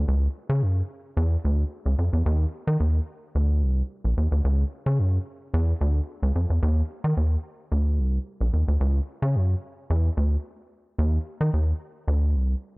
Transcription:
0, 0, Header, 1, 2, 480
1, 0, Start_track
1, 0, Tempo, 545455
1, 72, Time_signature, 4, 2, 24, 8
1, 11240, End_track
2, 0, Start_track
2, 0, Title_t, "Analog synth bass"
2, 0, Program_c, 0, 38
2, 71, Note_on_c, 0, 37, 103
2, 244, Note_off_c, 0, 37, 0
2, 435, Note_on_c, 0, 49, 106
2, 549, Note_on_c, 0, 42, 85
2, 562, Note_off_c, 0, 49, 0
2, 723, Note_off_c, 0, 42, 0
2, 1028, Note_on_c, 0, 40, 112
2, 1202, Note_off_c, 0, 40, 0
2, 1272, Note_on_c, 0, 38, 97
2, 1445, Note_off_c, 0, 38, 0
2, 1633, Note_on_c, 0, 37, 91
2, 1717, Note_off_c, 0, 37, 0
2, 1747, Note_on_c, 0, 41, 79
2, 1841, Note_off_c, 0, 41, 0
2, 1874, Note_on_c, 0, 40, 88
2, 1957, Note_off_c, 0, 40, 0
2, 1987, Note_on_c, 0, 39, 114
2, 2162, Note_off_c, 0, 39, 0
2, 2353, Note_on_c, 0, 51, 101
2, 2436, Note_off_c, 0, 51, 0
2, 2465, Note_on_c, 0, 39, 94
2, 2640, Note_off_c, 0, 39, 0
2, 2949, Note_on_c, 0, 38, 94
2, 3190, Note_on_c, 0, 36, 87
2, 3203, Note_off_c, 0, 38, 0
2, 3364, Note_off_c, 0, 36, 0
2, 3559, Note_on_c, 0, 34, 91
2, 3640, Note_off_c, 0, 34, 0
2, 3672, Note_on_c, 0, 39, 84
2, 3764, Note_off_c, 0, 39, 0
2, 3798, Note_on_c, 0, 38, 93
2, 3880, Note_off_c, 0, 38, 0
2, 3911, Note_on_c, 0, 37, 111
2, 4084, Note_off_c, 0, 37, 0
2, 4278, Note_on_c, 0, 49, 104
2, 4391, Note_on_c, 0, 42, 92
2, 4404, Note_off_c, 0, 49, 0
2, 4564, Note_off_c, 0, 42, 0
2, 4872, Note_on_c, 0, 40, 118
2, 5045, Note_off_c, 0, 40, 0
2, 5111, Note_on_c, 0, 38, 102
2, 5284, Note_off_c, 0, 38, 0
2, 5478, Note_on_c, 0, 37, 101
2, 5560, Note_off_c, 0, 37, 0
2, 5592, Note_on_c, 0, 41, 84
2, 5684, Note_off_c, 0, 41, 0
2, 5719, Note_on_c, 0, 40, 84
2, 5800, Note_off_c, 0, 40, 0
2, 5831, Note_on_c, 0, 39, 121
2, 6004, Note_off_c, 0, 39, 0
2, 6196, Note_on_c, 0, 51, 96
2, 6278, Note_off_c, 0, 51, 0
2, 6310, Note_on_c, 0, 39, 85
2, 6483, Note_off_c, 0, 39, 0
2, 6790, Note_on_c, 0, 38, 94
2, 7030, Note_on_c, 0, 36, 93
2, 7044, Note_off_c, 0, 38, 0
2, 7204, Note_off_c, 0, 36, 0
2, 7397, Note_on_c, 0, 34, 92
2, 7479, Note_off_c, 0, 34, 0
2, 7509, Note_on_c, 0, 39, 83
2, 7602, Note_off_c, 0, 39, 0
2, 7638, Note_on_c, 0, 38, 92
2, 7720, Note_off_c, 0, 38, 0
2, 7748, Note_on_c, 0, 37, 108
2, 7923, Note_off_c, 0, 37, 0
2, 8116, Note_on_c, 0, 49, 103
2, 8231, Note_on_c, 0, 42, 96
2, 8245, Note_off_c, 0, 49, 0
2, 8404, Note_off_c, 0, 42, 0
2, 8713, Note_on_c, 0, 40, 108
2, 8885, Note_off_c, 0, 40, 0
2, 8951, Note_on_c, 0, 38, 97
2, 9124, Note_off_c, 0, 38, 0
2, 9667, Note_on_c, 0, 39, 112
2, 9842, Note_off_c, 0, 39, 0
2, 10037, Note_on_c, 0, 51, 102
2, 10119, Note_off_c, 0, 51, 0
2, 10150, Note_on_c, 0, 39, 89
2, 10324, Note_off_c, 0, 39, 0
2, 10627, Note_on_c, 0, 38, 107
2, 10869, Note_on_c, 0, 36, 93
2, 10883, Note_off_c, 0, 38, 0
2, 11043, Note_off_c, 0, 36, 0
2, 11240, End_track
0, 0, End_of_file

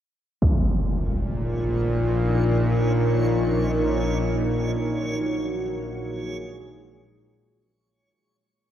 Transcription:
0, 0, Header, 1, 5, 480
1, 0, Start_track
1, 0, Key_signature, -5, "minor"
1, 0, Tempo, 500000
1, 8363, End_track
2, 0, Start_track
2, 0, Title_t, "Synth texture"
2, 0, Program_c, 0, 99
2, 406, Note_on_c, 0, 73, 71
2, 7512, Note_off_c, 0, 73, 0
2, 8363, End_track
3, 0, Start_track
3, 0, Title_t, "Ambient pad"
3, 0, Program_c, 1, 92
3, 411, Note_on_c, 1, 63, 68
3, 853, Note_on_c, 1, 65, 64
3, 895, Note_on_c, 1, 70, 67
3, 2012, Note_on_c, 1, 73, 62
3, 3956, Note_off_c, 1, 65, 0
3, 4113, Note_on_c, 1, 66, 73
3, 5373, Note_off_c, 1, 73, 0
3, 5542, Note_on_c, 1, 68, 74
3, 7492, Note_off_c, 1, 68, 0
3, 7497, Note_off_c, 1, 63, 0
3, 7498, Note_off_c, 1, 70, 0
3, 7499, Note_off_c, 1, 66, 0
3, 8363, End_track
4, 0, Start_track
4, 0, Title_t, "Synth drone"
4, 0, Program_c, 2, 95
4, 398, Note_on_c, 2, 46, 76
4, 401, Note_on_c, 2, 34, 66
4, 7579, Note_off_c, 2, 46, 0
4, 7580, Note_off_c, 2, 34, 0
4, 8363, End_track
5, 0, Start_track
5, 0, Title_t, "Impact"
5, 0, Program_c, 3, 103
5, 403, Note_on_c, 3, 60, 68
5, 581, Note_off_c, 3, 60, 0
5, 8363, End_track
0, 0, End_of_file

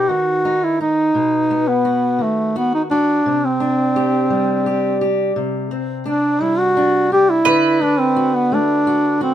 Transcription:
0, 0, Header, 1, 4, 480
1, 0, Start_track
1, 0, Tempo, 700935
1, 785, Time_signature, 3, 2, 24, 8
1, 6397, End_track
2, 0, Start_track
2, 0, Title_t, "Mandolin"
2, 0, Program_c, 0, 25
2, 5102, Note_on_c, 0, 71, 91
2, 6397, Note_off_c, 0, 71, 0
2, 6397, End_track
3, 0, Start_track
3, 0, Title_t, "Duduk"
3, 0, Program_c, 1, 69
3, 0, Note_on_c, 1, 67, 86
3, 58, Note_on_c, 1, 66, 87
3, 68, Note_off_c, 1, 67, 0
3, 434, Note_on_c, 1, 64, 86
3, 445, Note_off_c, 1, 66, 0
3, 550, Note_off_c, 1, 64, 0
3, 554, Note_on_c, 1, 63, 88
3, 1150, Note_on_c, 1, 59, 91
3, 1160, Note_off_c, 1, 63, 0
3, 1521, Note_on_c, 1, 57, 80
3, 1532, Note_off_c, 1, 59, 0
3, 1754, Note_off_c, 1, 57, 0
3, 1762, Note_on_c, 1, 59, 88
3, 1866, Note_off_c, 1, 59, 0
3, 1879, Note_on_c, 1, 63, 81
3, 1930, Note_off_c, 1, 63, 0
3, 1991, Note_on_c, 1, 62, 88
3, 2363, Note_on_c, 1, 60, 81
3, 2373, Note_off_c, 1, 62, 0
3, 3554, Note_off_c, 1, 60, 0
3, 4155, Note_on_c, 1, 62, 83
3, 4398, Note_on_c, 1, 64, 91
3, 4408, Note_off_c, 1, 62, 0
3, 4509, Note_on_c, 1, 66, 99
3, 4520, Note_off_c, 1, 64, 0
3, 4867, Note_off_c, 1, 66, 0
3, 4879, Note_on_c, 1, 67, 93
3, 4996, Note_on_c, 1, 64, 95
3, 5007, Note_off_c, 1, 67, 0
3, 5359, Note_on_c, 1, 62, 93
3, 5369, Note_off_c, 1, 64, 0
3, 5473, Note_on_c, 1, 60, 90
3, 5483, Note_off_c, 1, 62, 0
3, 5717, Note_on_c, 1, 59, 84
3, 5727, Note_off_c, 1, 60, 0
3, 5846, Note_on_c, 1, 62, 97
3, 5856, Note_off_c, 1, 59, 0
3, 6312, Note_off_c, 1, 62, 0
3, 6316, Note_on_c, 1, 60, 82
3, 6397, Note_off_c, 1, 60, 0
3, 6397, End_track
4, 0, Start_track
4, 0, Title_t, "Steel-string acoustic guitar"
4, 0, Program_c, 2, 25
4, 0, Note_on_c, 2, 59, 49
4, 0, Note_on_c, 2, 63, 60
4, 63, Note_on_c, 2, 51, 56
4, 300, Note_off_c, 2, 63, 0
4, 308, Note_on_c, 2, 63, 59
4, 543, Note_off_c, 2, 63, 0
4, 551, Note_on_c, 2, 63, 53
4, 756, Note_off_c, 2, 51, 0
4, 758, Note_off_c, 2, 59, 0
4, 760, Note_off_c, 2, 63, 0
4, 786, Note_on_c, 2, 47, 62
4, 1031, Note_on_c, 2, 59, 50
4, 1266, Note_on_c, 2, 66, 58
4, 1497, Note_on_c, 2, 51, 53
4, 1506, Note_off_c, 2, 47, 0
4, 1744, Note_off_c, 2, 66, 0
4, 1752, Note_on_c, 2, 66, 63
4, 1985, Note_off_c, 2, 66, 0
4, 1993, Note_on_c, 2, 66, 59
4, 2193, Note_off_c, 2, 51, 0
4, 2200, Note_off_c, 2, 59, 0
4, 2201, Note_off_c, 2, 66, 0
4, 2232, Note_on_c, 2, 48, 67
4, 2467, Note_on_c, 2, 62, 53
4, 2712, Note_on_c, 2, 67, 66
4, 2946, Note_on_c, 2, 55, 60
4, 3184, Note_off_c, 2, 67, 0
4, 3192, Note_on_c, 2, 67, 66
4, 3424, Note_off_c, 2, 67, 0
4, 3432, Note_on_c, 2, 67, 60
4, 3640, Note_off_c, 2, 48, 0
4, 3640, Note_off_c, 2, 67, 0
4, 3671, Note_on_c, 2, 48, 71
4, 3691, Note_off_c, 2, 62, 0
4, 3906, Note_off_c, 2, 55, 0
4, 3910, Note_on_c, 2, 60, 52
4, 4146, Note_on_c, 2, 62, 60
4, 4387, Note_on_c, 2, 55, 58
4, 4632, Note_off_c, 2, 62, 0
4, 4635, Note_on_c, 2, 62, 66
4, 4871, Note_off_c, 2, 62, 0
4, 4874, Note_on_c, 2, 62, 57
4, 5076, Note_off_c, 2, 55, 0
4, 5078, Note_off_c, 2, 48, 0
4, 5078, Note_off_c, 2, 60, 0
4, 5108, Note_on_c, 2, 50, 68
4, 5349, Note_off_c, 2, 62, 0
4, 5352, Note_on_c, 2, 59, 53
4, 5590, Note_on_c, 2, 66, 62
4, 5833, Note_on_c, 2, 57, 56
4, 6071, Note_off_c, 2, 66, 0
4, 6074, Note_on_c, 2, 66, 65
4, 6303, Note_off_c, 2, 66, 0
4, 6306, Note_on_c, 2, 66, 59
4, 6397, Note_off_c, 2, 50, 0
4, 6397, Note_off_c, 2, 57, 0
4, 6397, Note_off_c, 2, 59, 0
4, 6397, Note_off_c, 2, 66, 0
4, 6397, End_track
0, 0, End_of_file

